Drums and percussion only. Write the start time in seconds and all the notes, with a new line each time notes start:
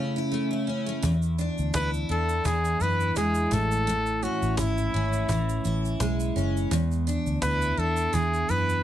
1.03 cajon bass, shaker
1.22 shaker
1.39 shaker
1.58 shaker
1.73 cajon bass, cajon slap, shaker
1.94 shaker
2.29 shaker
2.45 cajon bass, shaker
2.65 shaker
2.80 shaker
3.00 shaker
3.16 cajon bass, cajon slap, shaker
3.35 shaker
3.52 cajon bass, shaker
3.71 shaker
3.88 shaker
4.06 shaker
4.23 shaker
4.42 shaker
4.57 cajon bass, cajon slap, shaker
4.78 shaker
5.13 shaker
5.29 cajon bass, shaker
5.49 shaker
5.65 shaker
5.85 shaker
6.00 cajon bass, cajon slap, shaker
6.20 shaker
6.37 shaker
6.57 shaker
6.71 cajon bass, shaker
6.91 shaker
7.08 shaker
7.26 shaker
7.42 cajon bass, cajon slap, shaker
7.62 shaker
7.96 shaker
8.13 cajon bass, shaker
8.34 shaker
8.49 shaker
8.69 shaker